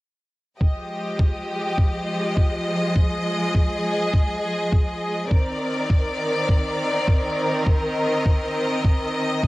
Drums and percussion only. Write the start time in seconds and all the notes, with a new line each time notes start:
0.61 kick
1.19 kick
1.78 kick
2.37 kick
2.96 kick
3.55 kick
4.14 kick
4.72 kick
5.31 kick
5.90 kick
6.49 kick
7.08 kick
7.67 kick
8.25 kick
8.84 kick
9.43 kick